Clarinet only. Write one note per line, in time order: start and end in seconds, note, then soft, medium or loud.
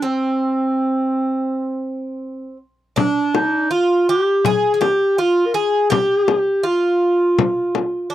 0.04 2.61 C4 medium
2.99 3.37 D4 medium
3.35 3.73 D#4 medium
3.72 4.11 F4 medium
4.09 4.48 G4 medium
4.47 4.85 G#4 loud
4.84 5.21 G4 medium
5.20 5.47 F4 loud
5.46 5.56 A#4 medium
5.54 5.91 G#4 loud
5.92 6.68 G4 loud
6.66 8.15 F4 medium